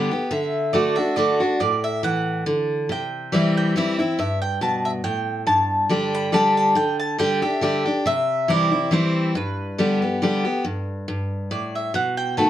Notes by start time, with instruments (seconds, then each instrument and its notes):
Already playing: steel-string acoustic guitar D3 G3 B3 G4
0.11 steel-string acoustic guitar B3 G4
0.31 steel-string acoustic guitar D3, mandolin E5
0.73 steel-string acoustic guitar D3 A3 D4 F#4, mandolin D5
0.96 steel-string acoustic guitar D4 F#4, mandolin E5
1.16 steel-string acoustic guitar D3 A3 D4 F#4, mandolin D5
1.40 steel-string acoustic guitar D4 F#4
1.60 steel-string acoustic guitar A2, mandolin D5
1.84 mandolin E5
2.03 steel-string acoustic guitar E3, mandolin F#5
2.46 steel-string acoustic guitar D3
2.89 steel-string acoustic guitar C3, mandolin G5
3.32 steel-string acoustic guitar E3 G3 C4 E4, mandolin E5
3.57 mandolin G5
3.76 steel-string acoustic guitar E3 G3 C4 E4, mandolin E5
3.99 steel-string acoustic guitar C4 E4, mandolin E5
4.19 steel-string acoustic guitar G2, mandolin E5
4.42 mandolin G5
4.61 steel-string acoustic guitar B2, mandolin A5
4.85 mandolin E5
5.04 steel-string acoustic guitar A2, mandolin G5
5.47 steel-string acoustic guitar G2, mandolin A5
5.89 steel-string acoustic guitar D3 G3 D4 G4
6.15 mandolin B5
6.32 steel-string acoustic guitar D3 G3 D4 G4, mandolin A5
6.57 mandolin A5
6.75 steel-string acoustic guitar D3, mandolin G5
7.00 mandolin A5
7.18 steel-string acoustic guitar D3 G3 D4 G4, mandolin G5
7.42 steel-string acoustic guitar D4 G4, mandolin E5
7.61 steel-string acoustic guitar D3 G3 D4 G4
7.86 steel-string acoustic guitar D4 G4
8.06 steel-string acoustic guitar C3, mandolin E5
8.48 steel-string acoustic guitar E3 G3 C4 E4, mandolin D5
8.71 steel-string acoustic guitar C4 E4
8.91 steel-string acoustic guitar E3 G3 C4 E4, mandolin C5
9.35 steel-string acoustic guitar G2, mandolin B4
9.78 steel-string acoustic guitar D3 G3 B3 G4
10.02 steel-string acoustic guitar B3 G4
10.22 steel-string acoustic guitar D3 G3 B3 G4
10.45 steel-string acoustic guitar B3 G4
10.65 steel-string acoustic guitar G2
11.08 steel-string acoustic guitar G2
11.51 steel-string acoustic guitar A2, mandolin D5
11.75 mandolin E5
11.94 steel-string acoustic guitar B2, mandolin F#5
12.17 mandolin G5
12.37 steel-string acoustic guitar D#3 A3 B3 F#4, mandolin A5